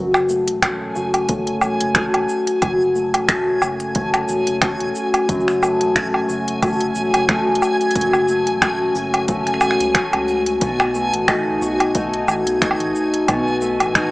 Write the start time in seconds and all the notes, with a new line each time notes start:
Already playing: F#1 F#2 F#4 G#5
0.14 finger snap, low woodblock, shaker
0.29 A3, shaker
0.48 E1, closed hi-hat, shaker
0.62 A3 C#4 F#4, finger snap, kick, closed hi-hat, low woodblock, shaker
0.96 F#1 F#4, shaker
1.14 closed hi-hat, low woodblock, shaker
1.29 A3 C#4 F#4, kick, closed hi-hat, shaker
1.47 closed hi-hat
1.61 E1, low woodblock, shaker
1.80 F#1, closed hi-hat
1.95 A3 C#4 F#4, finger snap, kick, closed hi-hat, shaker
2.14 E1, closed hi-hat, low woodblock
2.29 shaker
2.47 closed hi-hat, shaker
2.62 F#1 F#2 F#4, kick, closed hi-hat, low woodblock, shaker
2.81 shaker
2.95 A3, shaker
3.14 E1, closed hi-hat, low woodblock, shaker
3.29 A3 C#4 F#4, finger snap, kick, closed hi-hat, shaker
3.62 F#1 F#4, low woodblock, shaker
3.80 closed hi-hat, shaker
3.95 A3 C#4 F#4, kick, closed hi-hat, shaker
4.14 finger snap, closed hi-hat, low woodblock, shaker
4.28 E1, shaker
4.47 F#1, closed hi-hat, shaker
4.62 A3 C#4 F#4, finger snap, kick, closed hi-hat, low woodblock, shaker
4.80 E1, closed hi-hat
4.95 shaker
5.14 closed hi-hat, low woodblock, shaker
5.28 F#1 F#2 F#4, kick, closed hi-hat, shaker
5.40 shaker
5.48 finger snap, shaker
5.52 shaker
5.62 A3, low woodblock, shaker
5.80 E1, closed hi-hat, shaker
5.96 A3 C#4 F#4, finger snap, kick, closed hi-hat, shaker
6.14 low woodblock
6.28 F#1 F#4, shaker
6.48 closed hi-hat, shaker
6.62 A3 C#4 F#4, kick, closed hi-hat, low woodblock, shaker
6.66 shaker
6.68 shaker
6.70 shaker
6.73 shaker
6.75 shaker
6.78 closed hi-hat, shaker
6.95 E1, shaker
7.14 F#1, closed hi-hat, low woodblock, shaker
7.29 A3 C#4 F#4, finger snap, kick, closed hi-hat, shaker
7.48 E1
7.55 closed hi-hat
7.62 low woodblock, shaker
7.81 closed hi-hat, shaker
7.91 closed hi-hat
7.95 F#1 F#2 F#4, kick, closed hi-hat, shaker
8.01 closed hi-hat
8.13 low woodblock, shaker
8.28 A3, shaker
8.47 E1, closed hi-hat, shaker
8.62 A3 C#4 F#4, finger snap, kick, closed hi-hat, low woodblock, shaker
8.95 F#1 F#4, shaker
9.14 closed hi-hat, low woodblock, shaker
9.28 A3 C#4 F#4, kick, closed hi-hat, shaker
9.47 finger snap, closed hi-hat, shaker
9.54 finger snap
9.61 E1, finger snap, low woodblock, shaker
9.71 finger snap
9.80 C#2, closed hi-hat, shaker
9.95 A3 C#4 F#4, finger snap, kick, closed hi-hat, shaker
10.13 C#2, closed hi-hat, low woodblock
10.28 shaker
10.46 closed hi-hat, shaker
10.61 B1 B2 F#4, kick, closed hi-hat, shaker
10.80 finger snap, low woodblock, shaker
10.95 A3, shaker
11.13 A1, closed hi-hat, shaker
11.28 A3 D#4 F#4, finger snap, kick, low woodblock, shaker
11.61 B1 F#4, shaker
11.80 closed hi-hat, low woodblock, shaker
11.95 A3 D#4 F#4, kick, closed hi-hat, shaker
12.14 closed hi-hat
12.27 A1, low woodblock, shaker
12.46 B1, closed hi-hat, shaker
12.61 A3 D#4 F#4, finger snap, kick, closed hi-hat, shaker
12.71 low woodblock
12.80 A1, closed hi-hat
12.95 shaker
13.14 closed hi-hat, shaker
13.28 B1 B2 F#4, kick, closed hi-hat, low woodblock, shaker
13.47 shaker
13.61 A3, shaker
13.80 A1, closed hi-hat, low woodblock, shaker
13.95 A3 D#4 F#4, finger snap, kick, closed hi-hat, shaker